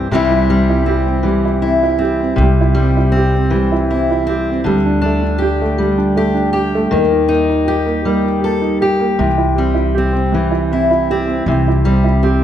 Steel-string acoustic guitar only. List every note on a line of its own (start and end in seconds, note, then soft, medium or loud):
0.11 1.25 C3 medium
0.11 1.23 E3 medium
0.11 0.50 G3 medium
0.11 0.86 C4 medium
0.11 1.61 E4 medium
0.50 2.74 G3 medium
0.86 1.97 C4 medium
1.23 2.33 E3 medium
1.62 3.89 E4 soft
1.99 2.33 C4 soft
2.36 3.51 C3 medium
2.75 5.78 G3 medium
3.12 4.25 C4 medium
3.50 4.60 E3 medium
3.91 4.66 E4 medium
4.27 4.60 C4 medium
4.64 6.90 D3 medium
5.02 6.87 D4 medium
5.38 6.17 G4 medium
5.78 8.05 G3 medium
6.17 6.52 G4 medium
6.53 7.67 G4 medium
6.91 9.14 D#3 medium
7.28 9.14 D#4 medium
7.68 8.44 G4 medium
8.05 9.58 G3 medium
8.44 8.81 A4 medium
8.82 10.72 G4 medium
9.19 10.32 C3 medium
9.58 11.85 G3 medium
9.98 11.10 C4 soft
10.34 11.42 E3 medium
10.73 12.44 E4 medium
11.11 11.43 C4 medium
11.48 12.44 C3 medium
11.85 12.44 G3 medium
12.23 12.44 C4 soft